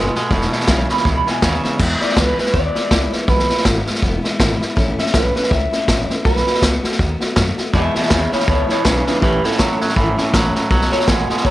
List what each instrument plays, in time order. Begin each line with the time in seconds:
Already playing: upright bass F#1, clean electric guitar B2 G#3 B4, steel-string acoustic guitar B2 D#3 A3 B3 F#4
0.15 clean electric guitar B2 G#3, steel-string acoustic guitar A3 B3 F#4, muted upright bass stroke, snare
0.30 upright bass E1, steel-string acoustic guitar E2 B2 E3 G#3 B3 E4, clean electric guitar E2 B2, kick, snare
0.41 snare
0.51 clean electric guitar E2 B2, steel-string acoustic guitar E3 G#3 B3 E4, muted upright bass stroke, snare
0.60 snare
0.67 upright bass B1, steel-string acoustic guitar E2 B2 E3 G#3 B3 E4, clean electric guitar E2 C#3, kick, snare, hi-hat pedal
0.89 clean electric guitar E2 C#3 B5, steel-string acoustic guitar E3 G#3 B3 E4, muted upright bass stroke, snare
0.97 snare
1.04 upright bass C#2, clean electric guitar E2 B2, steel-string acoustic guitar E3 G#3 B3 E4, kick, snare
1.17 clean electric guitar B5
1.26 clean electric guitar E2 B2, steel-string acoustic guitar E3 G#3 B3 E4, muted upright bass stroke, snare
1.30 clean electric guitar G#5
1.41 upright bass D#2, steel-string acoustic guitar E2 B2 E3 G#3 B3 E4, clean electric guitar E2 C#3 F#5, kick, snare, hi-hat pedal
1.54 clean electric guitar E5
1.63 clean electric guitar E2 C#3, steel-string acoustic guitar E3 G#3 B3 E4, muted upright bass stroke, snare
1.78 steel-string acoustic guitar E2 B2 E3 G#3 B3 E4, upright bass E2, kick, snare, crash
2.00 steel-string acoustic guitar E3 G#3 B3 E4, clean electric guitar D5, muted upright bass stroke, snare
2.09 snare
2.16 upright bass C#2, steel-string acoustic guitar E2 B2 E3 G#3 B3 E4, clean electric guitar B4, kick, snare, hi-hat pedal
2.38 steel-string acoustic guitar E3 G#3 B3 E4, clean electric guitar B4, muted upright bass stroke, snare
2.46 snare
2.54 upright bass D#2, steel-string acoustic guitar E3 G#3 B3 E4, clean electric guitar D5, kick, snare
2.75 steel-string acoustic guitar E3 G#3 B3 E4, muted upright bass stroke, snare
2.91 upright bass C#2, steel-string acoustic guitar E2 B2 E3 G#3 B3 E4, kick, snare, hi-hat pedal
3.12 steel-string acoustic guitar E3 G#3 B3 E4, clean electric guitar B4, muted upright bass stroke, snare
3.28 upright bass B1, steel-string acoustic guitar E2 B2 E3 G#3 B3 E4, clean electric guitar B4, kick, snare
3.39 snare
3.49 steel-string acoustic guitar E3 G#3 B3 E4, muted upright bass stroke, snare
3.58 snare
3.65 upright bass G#1, steel-string acoustic guitar E2 B2 E3 G#3 B3 E4, kick, snare, hi-hat pedal
3.86 steel-string acoustic guitar E3 G#3 B3 E4, muted upright bass stroke, snare
3.95 snare
4.01 upright bass E1, steel-string acoustic guitar E3 G#3 B3 E4, kick, snare
4.22 steel-string acoustic guitar E3 G#3 B3 E4, muted upright bass stroke, snare
4.39 upright bass G#1, steel-string acoustic guitar E2 B2 E3 G#3 B3 E4, kick, snare, hi-hat pedal
4.61 steel-string acoustic guitar E3 G#3 B3 E4, muted upright bass stroke, snare
4.76 upright bass A1, steel-string acoustic guitar A2 E3 A3 C#4 E4, kick, snare
4.98 steel-string acoustic guitar A3 C#4 E4, clean electric guitar E5, muted upright bass stroke, snare
5.06 snare
5.14 upright bass B1, steel-string acoustic guitar A2 E3 A3 C#4 E4, clean electric guitar B4, kick, snare, hi-hat pedal
5.35 steel-string acoustic guitar A3 C#4 E4, clean electric guitar B4, muted upright bass stroke, snare
5.43 snare
5.50 upright bass C#2, steel-string acoustic guitar E3 A3 C#4 E4, clean electric guitar E5, kick, snare
5.71 steel-string acoustic guitar A3 C#4 E4, muted upright bass stroke, snare
5.87 upright bass A1, steel-string acoustic guitar A2 E3 A3 C#4 E4, kick, snare, hi-hat pedal
6.09 steel-string acoustic guitar A3 C#4 E4, clean electric guitar B4, muted upright bass stroke, snare
6.24 upright bass B1, steel-string acoustic guitar B2 D#3 A3 B3 F#4, clean electric guitar B4, kick, snare
6.36 snare
6.47 steel-string acoustic guitar A3 B3 F#4, muted upright bass stroke, snare
6.55 snare
6.62 upright bass C#2, steel-string acoustic guitar B2 D#3 A3 B3 F#4, kick, snare, hi-hat pedal
6.83 steel-string acoustic guitar A3 B3 F#4, muted upright bass stroke, snare
6.92 snare
6.98 upright bass D#2, steel-string acoustic guitar D#3 A3 B3 F#4, kick, snare
7.20 steel-string acoustic guitar A3 B3 F#4, muted upright bass stroke, snare
7.36 upright bass F#2, steel-string acoustic guitar B2 D#3 A3 B3 F#4, kick, snare, hi-hat pedal
7.58 steel-string acoustic guitar A3 B3 F#4, muted upright bass stroke, snare
7.73 steel-string acoustic guitar E2 B2 E3 G#3 B3 E4, clean electric guitar E2 B2 G#4 E5, upright bass E2, kick, snare
7.94 clean electric guitar E2 B2 G#4 E5, steel-string acoustic guitar E3 G#3 B3 E4, muted upright bass stroke, snare
8.03 snare
8.10 upright bass D#2, steel-string acoustic guitar E2 B2 E3 G#3 B3 E4, clean electric guitar E2 C#3 G#4 E5, kick, snare, hi-hat pedal
8.31 clean electric guitar E2 C#3 E4 C#5, steel-string acoustic guitar E3 G#3 B3 E4, muted upright bass stroke, snare
8.40 snare
8.47 upright bass C#2, clean electric guitar E2 B2 E4 C#5, steel-string acoustic guitar E3 G#3 B3 E4, kick, snare
8.68 clean electric guitar E2 B2 E4 C#5, steel-string acoustic guitar E3 G#3 B3 E4, muted upright bass stroke, snare
8.84 upright bass B1, steel-string acoustic guitar E2 B2 E3 G#3 B3 E4, clean electric guitar E2 C#3 D4 B4, kick, snare, hi-hat pedal
9.06 clean electric guitar E2 C#3 D4 B4, steel-string acoustic guitar E3 G#3 B3 E4, muted upright bass stroke, snare
9.21 upright bass A1, steel-string acoustic guitar A2 E3 A3 C#4 E4, clean electric guitar A2 E3 G4 B4, kick, snare
9.42 clean electric guitar A2 E3 A4, steel-string acoustic guitar A3 C#4 E4, muted upright bass stroke, snare
9.52 snare
9.58 upright bass F#1, steel-string acoustic guitar A2 E3 A3 C#4 E4, clean electric guitar A2 F#3, kick, snare, hi-hat pedal
9.81 clean electric guitar A2 F#3, steel-string acoustic guitar A3 C#4 E4, muted upright bass stroke, snare
9.89 snare
9.96 upright bass G#1, clean electric guitar A2 E3, steel-string acoustic guitar E3 A3 C#4 E4, kick, snare
10.16 clean electric guitar A2 E3, steel-string acoustic guitar A3 C#4 E4, muted upright bass stroke, snare
10.33 upright bass A1, steel-string acoustic guitar A2 E3 A3 C#4 E4, clean electric guitar A2 F#3, kick, snare, hi-hat pedal
10.54 clean electric guitar A2 F#3, steel-string acoustic guitar A3 C#4 E4, muted upright bass stroke, snare
10.69 upright bass B1, steel-string acoustic guitar B2 D#3 A3 B3 F#4, clean electric guitar B2 F#3, kick, snare
10.81 snare
10.90 clean electric guitar B2 F#3 C#5, steel-string acoustic guitar A3 B3 F#4, muted upright bass stroke, snare
11.00 snare
11.07 upright bass A1, steel-string acoustic guitar B2 D#3 A3 B3 F#4, clean electric guitar B2 G#3 F#5, kick, snare, hi-hat pedal
11.28 clean electric guitar B2 G#3, steel-string acoustic guitar A3 B3 F#4, muted upright bass stroke, snare
11.37 snare
11.44 upright bass C#2, clean electric guitar B2 F#3 C#5, steel-string acoustic guitar D#3 A3 B3 F#4, kick, snare